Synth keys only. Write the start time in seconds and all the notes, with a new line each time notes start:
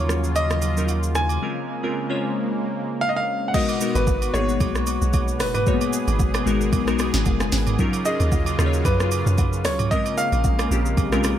Already playing: F3 F#3 C#4 D#4 F4 A#4
0.77 F#3 C#4 D#4 F4 A#4
1.42 G#3 C4 C#4 F4 A#4
1.83 G#3 C4 C#4 F4 A#4
2.09 G#3 C#4 F4 C5 C#5
3.54 G#3 B3 D#4 F#4 A#4
3.81 G#3 B3 D#4 F#4 A#4
4.34 G#3 A#3 D#4 F#4 G#4
4.41 B3
5.67 G#3 A#3 D#4 F#4 C#5
5.73 B3
6.46 G#3 B3 D#4 F#4 A#4
6.87 G#3 B3 D#4 F#4 A#4
7.26 G#4 F5
7.41 B4 G#5
7.68 A#4 F#5
7.79 F#3 C#4 D#4 F4 A#4
8.05 F#3 C#4 D#4 F4 G#4
8.59 F#3 C#4 D#4 F4 G#4
8.66 C#5
9.91 G#3 C4 C#4 F4 A#4
10.71 G#3 C4 C#4 F4 G4
11.12 G#3 C4 C#4 F4 A#4